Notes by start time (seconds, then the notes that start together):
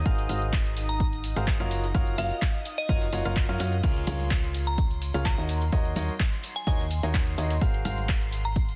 Already playing: D#4 D#5
0.06 G#1 F#4 G#4 A#4 C5 F5, kick, closed hi-hat
0.18 closed hi-hat
0.29 G#1 F#4 G#4 A#4 C5 F5, closed hi-hat, open hi-hat
0.42 closed hi-hat
0.53 kick, snare, clap, closed hi-hat
0.66 closed hi-hat
0.77 closed hi-hat, open hi-hat
0.89 A#5, closed hi-hat
1.00 kick, closed hi-hat
1.13 closed hi-hat
1.24 closed hi-hat, open hi-hat
1.36 G#1 F#4 G#4 A#4 C5 F5, snare, closed hi-hat
1.47 kick, snare, clap, closed hi-hat
1.60 F#1 F4 F#4 A#4 C#5 F5, closed hi-hat
1.71 closed hi-hat, open hi-hat
1.84 closed hi-hat
1.95 F#1 F4 F#4 A#4 C#5 F5, kick, closed hi-hat
2.07 closed hi-hat
2.18 F#1 F4 F#4 A#4 C#5 F5, open hi-hat
2.31 closed hi-hat
2.42 kick, snare, clap, closed hi-hat
2.54 closed hi-hat
2.65 closed hi-hat, open hi-hat
2.78 D#5, closed hi-hat
2.89 F#1 F4 F#4 A#4 C#5 F5, kick, closed hi-hat
3.02 snare, closed hi-hat
3.13 F#1 F4 F#4 A#4 C#5 F5, open hi-hat
3.25 F#1 F4 F#4 A#4 C#5 F5, closed hi-hat
3.36 kick, clap, closed hi-hat
3.49 F#2 F4 F#4 A#4 C#5 F5, closed hi-hat
3.60 F#2 F4 F#4 A#4 C#5 F5, snare, closed hi-hat, open hi-hat
3.73 closed hi-hat
3.83 C#2 F4 G#4 A#4 C#5 F5 C6, kick, closed hi-hat, crash, tambourine
3.96 closed hi-hat
4.07 C#2 F4 G#4 A#4 C#5 F5, closed hi-hat, open hi-hat, tambourine, high conga
4.20 closed hi-hat, tambourine
4.31 kick, snare, clap, closed hi-hat, tambourine
4.43 closed hi-hat
4.54 closed hi-hat, open hi-hat, tambourine
4.67 A#5, closed hi-hat, tambourine
4.78 kick, closed hi-hat, tambourine
4.91 closed hi-hat, tambourine
5.02 closed hi-hat, open hi-hat, tambourine
5.14 C#2 F4 G#4 A#4 C#5 F5, snare, closed hi-hat, tambourine
5.25 A#5, kick, snare, clap, closed hi-hat, tambourine
5.38 D#2 D#4 F#4 A#4 C#5 D#5, closed hi-hat
5.49 closed hi-hat, open hi-hat, tambourine
5.62 closed hi-hat, tambourine
5.72 D#2 D#4 F#4 A#4 C#5 D#5, kick, closed hi-hat, tambourine
5.85 closed hi-hat
5.96 D#2 D#4 F#4 A#4 C#5 D#5, open hi-hat, tambourine, high conga
6.09 closed hi-hat, tambourine
6.20 kick, snare, clap, closed hi-hat, tambourine
6.33 closed hi-hat
6.43 closed hi-hat, open hi-hat, tambourine
6.56 G#5, closed hi-hat, tambourine
6.67 D#2 D#4 F#4 A#4 C#5 D#5 G#5, kick, closed hi-hat, tambourine
6.80 snare, closed hi-hat, tambourine
6.91 closed hi-hat, open hi-hat, tambourine
7.03 D#2 D#4 F#4 A#4 C#5 D#5, snare, closed hi-hat, tambourine
7.14 kick, snare, clap, closed hi-hat, tambourine
7.27 closed hi-hat
7.38 D#2 D#4 F#4 A#4 C#5 D#5, closed hi-hat, open hi-hat, tambourine
7.50 snare, closed hi-hat, tambourine
7.61 G#1 F#4 G#4 A#4 C5 F5, kick, closed hi-hat, tambourine
7.74 closed hi-hat
7.85 G#1 F#4 G#4 A#4 C5 F5, closed hi-hat, open hi-hat, tambourine, high conga
7.97 closed hi-hat, tambourine
8.09 kick, snare, clap, closed hi-hat, tambourine
8.21 closed hi-hat
8.32 closed hi-hat, open hi-hat, tambourine
8.44 A#5, closed hi-hat, tambourine
8.56 kick, closed hi-hat, tambourine
8.69 closed hi-hat, tambourine